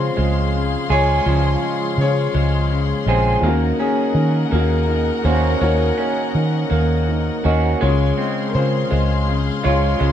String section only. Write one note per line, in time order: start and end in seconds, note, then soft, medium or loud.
0.00 3.41 G#4 medium
0.00 3.40 F5 medium
0.00 3.41 C6 medium
3.45 7.78 A#4 medium
3.45 7.78 D#5 medium
3.45 7.78 F#5 medium
7.84 10.12 G#4 medium
7.84 10.12 F5 medium
7.84 10.12 C6 medium